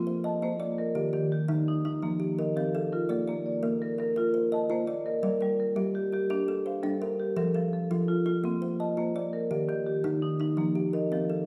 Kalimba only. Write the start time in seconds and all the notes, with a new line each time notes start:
Already playing: A#3
0.07 C5
0.24 D#5
0.42 F4
0.60 D5
0.95 D#3 G4
1.13 G4
1.48 D#3 D#4
1.85 D#4
2.02 F3
2.20 G4
2.39 A#4
2.57 C4
2.75 A4
3.09 A#3 D5
3.28 D5
3.63 A#3 A#4
3.98 A#4
4.16 A#4
4.34 C5
4.52 D#5
4.70 F4
4.87 D5
5.23 G3 A#4
5.41 A#4
5.76 G3 G4
6.12 G4
6.30 G4
6.48 A4
6.66 C5
6.83 D4
7.02 A#4
7.36 F3 A4
7.54 A4
7.91 F3 F4
8.26 F4
8.44 A#3
8.62 C5
8.80 D#5
8.97 F4
9.16 D5
9.51 D#3 G4
9.69 G4
10.04 D#3 D#4
10.40 D#4
10.57 F3
10.75 G4
10.93 A#4
11.12 C4
11.30 A4